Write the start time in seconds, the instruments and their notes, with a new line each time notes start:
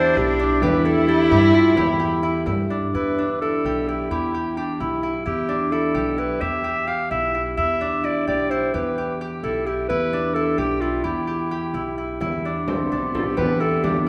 Already playing: upright bass E2, harp D4 E4 G4 A4, cello D4, clarinet C5
0.16 upright bass B1, harp E4, clarinet G4, frame drum
0.39 harp D4
0.62 upright bass E2, cello E4, harp G4, clarinet B4, frame drum
0.85 harp E4, clarinet A4
1.08 clarinet G4, harp A4
1.30 upright bass G2, harp G4, frame drum
1.54 harp E4, clarinet F4
1.76 upright bass E2, clarinet E4, harp G4, frame drum
2.00 harp G4
2.23 harp E4
2.46 upright bass G2, harp E4, frame drum
2.70 harp D4
2.94 upright bass E2, harp E4, clarinet B4
3.18 harp D4
3.41 harp E4, clarinet A4
3.64 upright bass B1, harp G4
3.88 harp E4, clarinet G4
4.11 upright bass E2, clarinet E4, harp G4
4.34 harp G4
4.57 clarinet D4, harp G4
4.80 upright bass B1, harp E4, clarinet E4
5.03 harp E4
5.26 upright bass E2, harp E4, clarinet G4
5.49 harp D4
5.72 harp E4, clarinet A4
5.95 upright bass B1, harp G4
6.18 harp E4, clarinet B4
6.41 upright bass E2, harp G4, clarinet E5
6.64 harp G4
6.87 harp G4, clarinet F5
7.11 upright bass B1, harp E4, clarinet E5
7.35 harp E4
7.57 upright bass E2, harp E4, clarinet E5
7.81 harp D4
8.04 harp E4, clarinet D5
8.27 upright bass B1, harp G4, clarinet D5
8.50 harp E4, clarinet C5
8.74 upright bass E2, harp G4, clarinet B4
8.98 harp G4
9.21 harp G4
9.43 upright bass B1, harp E4, clarinet A4
9.66 harp E4, clarinet G4
9.89 upright bass E2, harp E4, clarinet B4
10.13 harp D4
10.34 harp E4, clarinet A4
10.58 upright bass B1, harp G4, clarinet G4
10.81 harp E4, clarinet F4
11.04 upright bass E2, clarinet E4, harp G4
11.27 harp G4
11.51 harp G4
11.74 upright bass B1, harp E4
11.98 harp E4
12.20 upright bass E2, cello B3, harp E4, frame drum
12.45 harp D4
12.68 harp C4, frame drum
12.91 upright bass B1, harp D4, frame drum
13.14 clarinet F4, harp A4, frame drum
13.26 clarinet G4
13.37 upright bass E2, harp G4, clarinet B4, frame drum
13.60 harp E4, clarinet A4
13.83 harp D4, clarinet G4, frame drum
14.01 clarinet F4